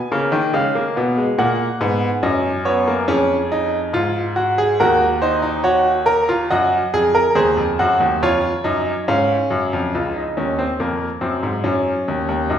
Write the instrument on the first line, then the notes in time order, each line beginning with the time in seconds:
grand piano
Already playing: G#5
0.12 C#3 A#3
0.32 D#3
0.53 C#3 G#3 F5
0.75 A#3
0.96 B2 B3
1.18 G#3
1.38 A#2 A#3 F#5
1.81 G#2 B3
2.23 F#2 C#4 D#5
2.65 B3 C#5
2.88 A#3
3.08 F2 C#4 G#4
3.52 D#4
3.93 G#2 F4
4.36 F#4
4.58 G#4
4.80 D#2 F#4 A#4
5.22 D#4 C5
5.42 D#4
5.64 F#4 C#5
6.06 A#4
6.29 F4
6.50 F#2 F#4 D#5
6.94 F2 G#4
7.15 A#4
7.35 D#2 G#4 C5
7.57 F2
7.79 F#2 F#4
8.00 D#2
8.22 F2 F4 C#5
8.64 F#2 D#4
9.08 G#2 C#4 F5
9.50 F#2
9.73 F2
9.95 C#2 F4
10.16 D#4
10.37 D#2 C#4
10.59 C4
10.80 F2 A#3
11.21 F#2 C4
11.43 G#2
11.64 F#2 C#4
12.08 D#2
12.29 D#2
12.50 F#2 D#4